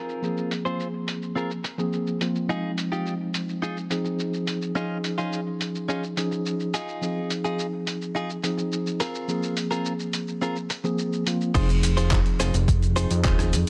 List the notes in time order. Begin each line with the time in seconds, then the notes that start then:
Already playing: C4 F4 G#4 A#4
0.09 shaker
0.22 F3 A#3 C4 G#4, shaker
0.37 shaker
0.51 open hi-hat, shaker
0.65 C4 F4 G#4 C5, shaker
0.80 shaker
1.07 muted clean electric guitar stroke, open hi-hat, shaker
1.22 shaker
1.35 C4 F4 G#4 A#4, shaker
1.51 shaker
1.64 muted clean electric guitar stroke, open hi-hat, shaker
1.78 F3 A#3 C4 G#4, muted clean electric guitar stroke, shaker
1.93 shaker
2.07 shaker
2.20 F3 A#3 C4 F4, muted clean electric guitar stroke, open hi-hat, shaker
2.35 shaker
2.48 F3 G#3 D#4 F4 G#4, shaker
2.78 open hi-hat, shaker
2.92 D#4 F4 G4, shaker
3.06 shaker
3.34 muted clean electric guitar stroke, open hi-hat, shaker
3.49 shaker
3.62 D#4 F4 G#4, shaker
3.77 shaker
3.90 F3 C4 D#4 G#4, muted clean electric guitar stroke, open hi-hat, shaker
4.05 muted clean electric guitar stroke, shaker
4.19 shaker
4.33 shaker
4.47 muted clean electric guitar stroke, open hi-hat, shaker
4.62 shaker
4.75 F3 C#4 D#4 F4 G#4, shaker
5.04 open hi-hat, shaker
5.18 C#4 D#4 F4 G#4, shaker
5.33 shaker
5.60 muted clean electric guitar stroke, open hi-hat, shaker
5.75 shaker
5.88 C#4 D#4 F4 G#4, shaker
6.03 shaker
6.17 F3 C#4 D#4 G#4, muted clean electric guitar stroke, open hi-hat, shaker
6.31 muted clean electric guitar stroke, shaker
6.46 shaker
6.60 shaker
6.74 D#4 F4 G#4, open hi-hat, shaker
6.88 shaker
7.01 F3 C4 D#4 G#4, shaker
7.30 open hi-hat, shaker
7.44 D#4 F4 G#4, shaker
7.59 shaker
7.87 muted clean electric guitar stroke, open hi-hat, shaker
8.02 shaker
8.15 D#4 F4 G#4, shaker
8.30 shaker
8.43 F3 C4 D#4 G#4, muted clean electric guitar stroke, open hi-hat, shaker
8.58 muted clean electric guitar stroke, shaker
8.72 shaker
8.86 shaker
9.00 C4 F4 G#4 A#4, open hi-hat, shaker
9.15 shaker
9.28 F3 A#3 C4 G#4, shaker
9.43 shaker
9.57 open hi-hat, shaker
9.71 C4 F4 G#4 A#4, shaker
9.85 shaker
9.99 shaker
10.13 muted clean electric guitar stroke, open hi-hat, shaker
10.28 shaker
10.41 C4 F4 G#4 A#4, shaker
10.56 shaker
10.70 muted clean electric guitar stroke, open hi-hat, shaker
10.84 F3 A#3 C4 G#4, muted clean electric guitar stroke, shaker
10.98 shaker
11.13 shaker
11.26 F3 A#3 C4 F4, muted clean electric guitar stroke, open hi-hat, shaker
11.41 shaker
11.54 F1 C4 D#4 F4 G#4 C5, kick, closed hi-hat, crash, shaker
11.69 closed hi-hat, shaker
11.83 muted clean electric guitar stroke, open hi-hat, shaker
11.97 D#4 F4 G#4 C5, closed hi-hat, shaker
12.11 kick, clap, closed hi-hat, shaker
12.26 closed hi-hat
12.40 F1 D#4 F4 G#4 C5, cross-stick, open hi-hat, shaker
12.54 F1, closed hi-hat, shaker
12.68 muted clean electric guitar stroke, kick, closed hi-hat, shaker
12.83 closed hi-hat, shaker
12.96 F3 C4 D#4 F4 G#4 C5, open hi-hat, shaker
13.11 F2, closed hi-hat, shaker
13.24 D#1 D#4 F4 G#4 C5, kick, clap, closed hi-hat, shaker
13.39 cross-stick, closed hi-hat, shaker
13.53 F2, open hi-hat, shaker